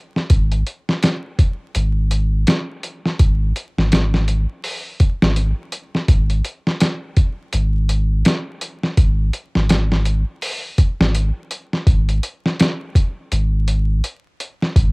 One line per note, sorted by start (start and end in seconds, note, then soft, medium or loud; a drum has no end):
0.16 snare soft
0.30 0.63 G#1 medium
0.30 kick loud
0.30 closed hi-hat medium
0.52 closed hi-hat soft
0.67 closed hi-hat medium
0.89 snare medium
1.03 snare loud
1.03 closed hi-hat medium
1.39 kick medium
1.39 closed hi-hat medium
1.75 2.45 G#1 medium
1.75 closed hi-hat medium
2.11 closed hi-hat medium
2.47 snare loud
2.47 closed hi-hat medium
2.83 closed hi-hat medium
3.06 snare soft
3.19 3.52 G#1 medium
3.19 kick loud
3.19 closed hi-hat medium
3.56 closed hi-hat medium
3.78 4.46 G#1 medium
3.78 snare medium
3.92 snare loud
3.92 closed hi-hat medium
4.14 snare medium
4.28 closed hi-hat medium
4.64 open hi-hat medium
5.00 kick medium
5.00 closed hi-hat medium
5.22 5.53 G#1 medium
5.22 snare loud
5.36 closed hi-hat medium
5.72 closed hi-hat medium
5.95 snare soft
6.08 6.41 G#1 medium
6.08 kick medium
6.08 closed hi-hat medium
6.30 closed hi-hat soft
6.45 closed hi-hat medium
6.67 snare medium
6.80 snare loud
6.80 closed hi-hat medium
7.17 kick medium
7.17 closed hi-hat medium
7.53 8.23 G#1 medium
7.53 closed hi-hat medium
7.89 closed hi-hat medium
8.25 snare loud
8.25 closed hi-hat medium
8.61 closed hi-hat medium
8.83 snare soft
8.97 9.30 G#1 loud
8.97 kick loud
8.97 closed hi-hat medium
9.33 closed hi-hat medium
9.55 10.24 G#1 medium
9.55 snare medium
9.70 snare loud
9.70 closed hi-hat medium
9.92 snare medium
10.06 closed hi-hat medium
10.42 open hi-hat medium
10.78 kick medium
10.78 closed hi-hat medium
11.00 11.31 G#1 medium
11.00 snare loud
11.15 closed hi-hat medium
11.51 closed hi-hat medium
11.73 snare soft
11.87 12.20 G#1 medium
11.87 kick loud
11.87 closed hi-hat medium
12.09 closed hi-hat soft
12.23 closed hi-hat medium
12.46 snare medium
12.59 snare loud
12.59 closed hi-hat medium
12.95 kick medium
12.95 closed hi-hat medium
13.32 14.01 G#1 medium
13.32 closed hi-hat medium
13.68 closed hi-hat medium
14.04 closed hi-hat medium
14.40 closed hi-hat medium
14.62 snare soft
14.76 14.92 G#1 medium
14.76 kick loud
14.76 closed hi-hat medium